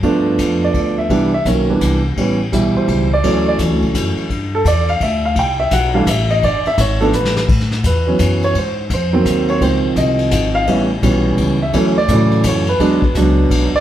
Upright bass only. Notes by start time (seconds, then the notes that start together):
0.02 G2
0.38 F2
0.74 D2
1.09 C2
1.45 B1
1.81 C2
2.17 A1
2.53 B1
2.75 muted upright bass stroke
2.88 C#2
3.24 D2
3.59 E2
3.71 D2
3.82 C#2
3.95 F#2
4.16 muted upright bass stroke
4.30 G2
4.65 E2
5.00 D2
5.35 C2
5.71 B1
6.07 A1
6.42 G1
6.65 muted upright bass stroke
6.78 G#1
7.13 A1
7.48 A2
7.84 E2
8.19 F#2
8.55 G#2
8.90 F2
9.25 D#2
9.61 C#2
9.96 C2
10.31 G#1
10.67 A1
11.02 B1
11.38 C#2
11.73 D2
12.08 A2
12.44 F#2
12.79 E2
13.15 C#2
13.50 B1
13.74 muted upright bass stroke